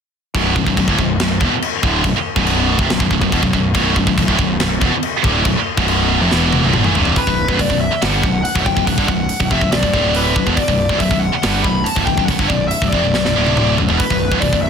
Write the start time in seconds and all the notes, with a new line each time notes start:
0.35 B0 B1 F#2 B2, kick, china
0.56 B0 B1 F#2, kick
0.67 B0 B1 F#2, kick
0.77 B0 B1 F#2, kick, china
0.88 D1 D2 A2, kick
0.98 B0 B1 F#2, kick
1.20 B0 B1 F#2, snare, china
1.40 E1 E2 B2, kick
1.51 muted distorted electric guitar stroke, muted picked electric bass stroke
1.62 china
1.83 D1 D2 A2 D3, kick
2.04 B0 B1 F#2, kick, china
2.15 muted picked electric bass stroke, muted distorted electric guitar stroke
2.36 B0 B1 F#2 B2, kick
2.47 china
2.79 F1 F2 C3, kick
2.89 B0 B1 F#2, snare, china
3.00 B0 B1 F#2, kick
3.11 B0 B1 F#2, kick
3.21 B0 B1 F#2, kick
3.32 E1 E2 B2, kick, china
3.43 B0 B1 F#2, kick
3.53 B0 B1 F#2, kick
3.74 B0 B1 F#2 B2, kick, china
3.96 B0 B1 F#2, kick
4.07 B0 B1 F#2, kick
4.18 B0 B1 F#2, kick, china
4.28 D1 D2 A2, kick
4.39 B0 B1 F#2, kick
4.60 B0 B1 F#2, snare, china
4.81 E1 E2 B2, kick
4.91 muted distorted electric guitar stroke, muted picked electric bass stroke
5.03 china
5.23 D1 D2 A2 D3, kick
5.45 B0 B1 F#2, kick, china
5.56 muted distorted electric guitar stroke, muted picked electric bass stroke
5.77 B0 B1 F#2 B2, kick
5.88 china
6.20 F1 F2 C3
6.31 E1 E2 B2 E3, snare
6.53 high tom
6.63 B0 B1 F#2
6.73 G1 G2 D3, mid tom
6.84 A1 A2 E3, mid tom
6.95 C1 C2 G2 C3, floor tom
7.05 floor tom
7.16 B4, kick, open hi-hat
7.27 B0 B1 F#2, kick
7.48 B0 B1 F#2, kick
7.59 B0 B1 F#2 D5, kick, open hi-hat
7.70 B0 B1 F#2, kick
7.81 E5
7.91 muted distorted electric guitar stroke, muted picked electric bass stroke
8.01 G1 G2 D3 G3 F#5, snare, open hi-hat
8.23 B0 B1 F#2, kick
8.44 F#5, open hi-hat
8.55 B0 B1 F#2, kick
8.66 B0 B1 F#2 G5, kick
8.76 B0 B1 F#2, kick
8.87 B0 B1 F#2 F#5, kick, open hi-hat
8.97 G1 G2 D3, kick
9.08 B0 B1 F#2 F#5, kick
9.29 open hi-hat
9.40 B0 B1 F#2, kick
9.51 F1 F2 C3 E5, kick
9.61 B0 B1 F#2, kick
9.72 B0 B1 F#2 D5, snare, open hi-hat
9.83 B0 B1 F#2, kick
9.93 D1 D2 A2 D3, kick
10.15 B4, open hi-hat
10.36 B0 B1 F#2, kick
10.47 E1 E2 B2, kick
10.57 D5, kick, open hi-hat
10.68 B0 B1 F#2, kick
10.89 B0 B1 F#2, kick
11.00 B0 B1 F#2 E5, kick, open hi-hat
11.11 B0 B1 F#2, kick
11.19 F#5
11.32 muted distorted electric guitar stroke, muted picked electric bass stroke
11.42 G1 G2 D3 G3, snare, open hi-hat
11.63 B0 B1 F#2 B5, kick
11.84 A5, open hi-hat
11.96 B0 B1 F#2, kick
12.05 B0 B1 F#2 G5, kick
12.18 B0 B1 F#2, kick
12.26 B0 B1 F#5, kick, open hi-hat
12.30 F#2
12.39 G1 G2 D3, kick
12.48 B0 B1 F#2 D5, kick
12.68 E5, open hi-hat
12.82 B0 B1 F#2, kick
12.89 F1 D5, kick
12.93 F2 C3
13.04 B0 B1 F#2
13.14 B0 B1 F#2, snare
13.25 B0 B1 F#2, snare
13.36 D1 D2 A2 D3
13.47 high tom
13.57 mid tom
13.78 B0 B1 F#2, floor tom
13.89 E1 E2 B2, floor tom
13.98 B4, kick, open hi-hat
14.10 B0 B1 F#2, kick
14.32 B0 B1 F#2, kick
14.40 B0 B1 F#2 D5, kick, open hi-hat
14.53 B0 B1 F#2, kick
14.62 E5